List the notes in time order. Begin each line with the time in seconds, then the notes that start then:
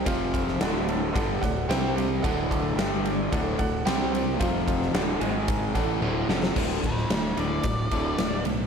0.05 F1 F2 C3 F3 F4 C5 F5, kick, ride
0.34 F4 C5 F5, kick, ride
0.48 snare
0.60 D1 D2 A2 D3 A4 D5 F#5, snare, ride
0.88 A4 D5 A5, ride
1.14 G1 G2 D3 G3 A4 D5 F#5, kick, ride
1.41 D1 D2 A2 A4 D5 F#5, kick, snare, ride
1.69 C2 C3 G3 C4 G4 C5 G5, snare, ride
1.96 G4 C5 G5, ride
2.22 D1 D2 A2 D3 A4 D5 F#5, kick, ride
2.50 A4 D5 A5, kick, ride
2.77 G1 G2 D3 G3 G4 D5 G5, snare, ride
3.04 G4 D5 G5, ride
3.32 D1 D2 A2 D3 A4 D5 F#5, kick, ride
3.58 D1 D2 A2 A4 D5 F#5, kick, ride
3.86 C2 C3 G3 C4 G4 C5 G5, snare, ride
4.12 G4 C5 G5, ride
4.39 F1 F2 C3 F3 F4 C5 F5, kick, ride
4.67 F4 C5 F5, kick, ride
4.82 snare
4.94 D1 D2 A2 D3 A4 D5 F#5, snare, ride
5.20 G#1 G#2 D#3 G#3 G#4 D#5 G#5, ride
5.48 kick, ride
5.73 A1 A2 E3 A3 A4 D5 F#5, kick, snare, ride
6.01 D1 D2 A2 D3, high tom
6.28 F1 F2 C3 F3 A4 D5 F#5, snare
6.43 snare
6.55 D1 D2 A2 D3, kick, crash
6.83 D1 D2 A2 A4 C5, kick, ride
6.97 snare
7.10 D1 D2 A2 F#4 D5, snare, ride
7.36 D1 D2 A2 D3 D5, ride
7.63 D1 D2 A2, kick, ride
7.91 D1 D2 A2 D3, kick, ride
8.18 D1 D2 A2, snare, ride
8.45 B1 D2 A2, ride